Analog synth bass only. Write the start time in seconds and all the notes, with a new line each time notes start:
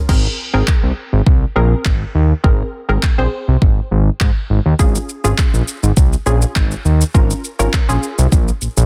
0.09 G#1
0.54 G#1
0.83 C2
1.13 G#1
1.27 C2
1.56 A#1
1.86 G#1
2.15 D#2
2.44 G#1
2.89 G#1
3.19 A#1
3.48 C2
3.62 G#1
3.91 G#1
4.21 G#2
4.50 G#1
4.66 D#2
4.79 G#1
5.25 G#1
5.54 A#1
5.83 G#1
5.97 C2
6.26 A#1
6.56 G#1
6.85 D#2
7.15 G#1
7.60 G#1
7.89 A#1
8.19 C2
8.32 A#1
8.62 A#1
8.77 A#1